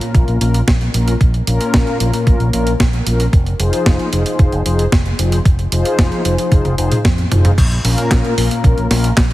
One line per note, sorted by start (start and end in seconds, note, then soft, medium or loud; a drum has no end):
0.01 0.38 A#2 medium
0.01 0.38 A#3 medium
0.01 0.38 C#4 medium
0.01 0.38 F4 medium
0.01 0.38 A#4 medium
0.01 closed hi-hat soft
0.15 0.24 A#1 medium
0.15 kick loud
0.15 closed hi-hat soft
0.28 0.38 A#1 medium
0.28 closed hi-hat soft
0.41 0.61 A#1 medium
0.41 0.60 A#2 medium
0.41 0.60 A#3 medium
0.41 0.60 C#4 medium
0.41 0.60 F4 medium
0.41 0.60 A#4 loud
0.41 closed hi-hat medium
0.54 closed hi-hat soft
0.68 0.87 A#1 medium
0.68 kick loud
0.68 snare loud
0.68 closed hi-hat soft
0.81 closed hi-hat soft
0.94 1.14 A#1 medium
0.94 1.13 A#2 medium
0.94 1.13 A#3 medium
0.94 1.13 C#4 medium
0.94 1.13 F4 medium
0.94 1.13 A#4 loud
0.94 closed hi-hat medium
1.08 closed hi-hat soft
1.21 1.40 A#1 medium
1.21 kick loud
1.21 closed hi-hat medium
1.34 closed hi-hat soft
1.47 1.57 A#1 medium
1.47 1.97 A#2 loud
1.47 1.97 A#3 medium
1.47 1.97 C#4 medium
1.47 1.97 F4 medium
1.47 1.97 A#4 loud
1.47 closed hi-hat medium
1.61 closed hi-hat soft
1.74 1.84 A#1 loud
1.74 kick loud
1.74 snare loud
1.74 closed hi-hat medium
1.87 closed hi-hat soft
2.00 2.10 A#1 medium
2.00 2.10 A#2 medium
2.00 2.10 A#3 medium
2.00 2.10 C#4 medium
2.00 2.10 F4 medium
2.00 2.10 A#4 medium
2.00 closed hi-hat medium
2.13 2.50 A#2 medium
2.13 2.50 A#3 medium
2.13 2.50 C#4 medium
2.13 2.50 F4 medium
2.13 2.50 A#4 medium
2.13 closed hi-hat medium
2.27 2.37 A#1 medium
2.27 kick loud
2.27 closed hi-hat soft
2.40 2.50 A#1 medium
2.40 closed hi-hat soft
2.53 2.73 A#1 medium
2.53 2.73 A#2 medium
2.53 2.73 A#3 medium
2.53 2.73 C#4 medium
2.53 2.73 F4 medium
2.53 2.73 A#4 loud
2.53 closed hi-hat medium
2.67 closed hi-hat soft
2.80 3.00 A#1 loud
2.80 kick loud
2.80 snare loud
2.80 closed hi-hat medium
2.93 closed hi-hat soft
3.06 3.26 A#1 medium
3.06 3.26 A#3 medium
3.06 3.26 C#4 medium
3.06 3.26 F4 medium
3.06 3.26 A#4 loud
3.06 closed hi-hat medium
3.20 closed hi-hat medium
3.33 3.53 F1 medium
3.33 kick loud
3.33 closed hi-hat soft
3.46 closed hi-hat soft
3.59 3.69 F1 medium
3.59 4.09 F3 loud
3.59 4.10 D#4 medium
3.59 4.09 F4 medium
3.59 4.09 G#4 medium
3.59 4.09 C5 loud
3.59 closed hi-hat medium
3.73 closed hi-hat medium
3.86 3.96 F1 loud
3.86 kick loud
3.86 snare loud
3.86 closed hi-hat medium
3.99 closed hi-hat soft
4.13 4.22 F1 medium
4.13 4.23 F3 medium
4.13 4.23 D#4 medium
4.13 4.23 F4 medium
4.13 4.23 G#4 medium
4.13 4.23 C5 loud
4.13 closed hi-hat medium
4.26 4.63 F3 medium
4.26 4.63 D#4 medium
4.26 4.63 F4 medium
4.26 4.63 G#4 medium
4.26 4.63 C5 medium
4.26 closed hi-hat medium
4.39 4.49 F1 medium
4.39 kick loud
4.39 closed hi-hat medium
4.52 4.62 F1 medium
4.52 closed hi-hat soft
4.66 4.85 F1 medium
4.66 4.85 F3 medium
4.66 4.85 D#4 medium
4.66 4.85 F4 medium
4.66 4.85 G#4 medium
4.66 4.85 C5 loud
4.66 closed hi-hat medium
4.79 closed hi-hat medium
4.92 5.12 F1 medium
4.92 kick loud
4.92 snare loud
4.92 closed hi-hat medium
5.06 closed hi-hat soft
5.19 5.38 F1 medium
5.19 5.38 F3 medium
5.19 5.38 D#4 medium
5.19 5.38 F4 medium
5.19 5.38 G#4 medium
5.19 5.38 C5 medium
5.19 closed hi-hat medium
5.32 closed hi-hat medium
5.45 5.65 F1 loud
5.45 kick loud
5.45 closed hi-hat medium
5.59 closed hi-hat soft
5.72 5.82 F1 medium
5.72 6.22 F3 loud
5.72 6.22 D#4 medium
5.72 6.22 F4 medium
5.72 6.22 G#4 medium
5.72 6.22 C5 loud
5.72 closed hi-hat loud
5.85 closed hi-hat medium
5.99 6.08 F1 loud
5.99 kick loud
5.99 snare loud
5.99 closed hi-hat medium
6.12 closed hi-hat soft
6.25 6.35 F1 medium
6.25 6.35 F3 medium
6.25 6.35 D#4 medium
6.25 6.35 F4 medium
6.25 6.35 G#4 medium
6.25 6.35 C5 loud
6.25 closed hi-hat medium
6.38 6.75 F3 medium
6.38 6.75 D#4 medium
6.38 6.75 F4 medium
6.38 6.75 G#4 medium
6.38 6.75 C5 medium
6.38 closed hi-hat medium
6.52 6.61 F1 medium
6.52 kick loud
6.52 closed hi-hat medium
6.52 high tom medium
6.65 6.75 F1 medium
6.65 closed hi-hat soft
6.65 high tom medium
6.78 6.88 F1 medium
6.78 6.98 F3 medium
6.78 6.98 D#4 medium
6.78 6.98 F4 medium
6.78 6.98 G#4 medium
6.78 6.98 C5 loud
6.78 closed hi-hat medium
6.92 closed hi-hat medium
6.92 mid tom medium
7.05 7.24 F2 medium
7.05 kick loud
7.05 snare loud
7.05 closed hi-hat medium
7.05 mid tom medium
7.18 closed hi-hat soft
7.31 7.51 F1 medium
7.31 7.51 D#4 medium
7.31 7.51 F4 medium
7.31 7.51 G#4 medium
7.31 7.51 C5 loud
7.31 closed hi-hat loud
7.31 mid tom loud
7.45 closed hi-hat medium
7.45 mid tom medium
7.58 7.77 A#1 loud
7.58 kick loud
7.58 closed hi-hat medium
7.58 crash loud
7.71 closed hi-hat soft
7.84 7.94 A#1 medium
7.84 8.34 A#2 loud
7.84 8.34 A#3 medium
7.84 8.34 C#4 medium
7.84 8.34 F4 medium
7.84 8.34 A#4 loud
7.84 open hi-hat loud
7.98 closed hi-hat medium
8.11 8.21 A#1 loud
8.11 kick loud
8.11 snare loud
8.11 clap medium
8.11 closed hi-hat medium
8.25 closed hi-hat soft
8.37 8.47 A#1 medium
8.37 8.48 A#2 medium
8.37 8.48 A#3 medium
8.37 8.48 C#4 medium
8.37 8.48 F4 medium
8.37 8.48 A#4 loud
8.37 open hi-hat loud
8.51 8.87 A#2 medium
8.51 8.87 A#3 medium
8.51 8.87 C#4 medium
8.51 8.87 F4 medium
8.51 8.87 A#4 medium
8.51 closed hi-hat medium
8.64 8.74 A#1 loud
8.64 kick loud
8.64 closed hi-hat medium
8.77 8.87 A#1 medium
8.77 closed hi-hat soft
8.90 9.10 A#1 loud
8.90 9.10 A#2 medium
8.90 9.10 A#3 medium
8.90 9.10 C#4 medium
8.90 9.10 F4 medium
8.90 9.10 A#4 loud
8.90 snare medium
8.90 open hi-hat loud
9.04 closed hi-hat medium
9.17 9.33 A#1 medium
9.17 kick loud
9.17 snare loud
9.17 clap loud
9.17 closed hi-hat medium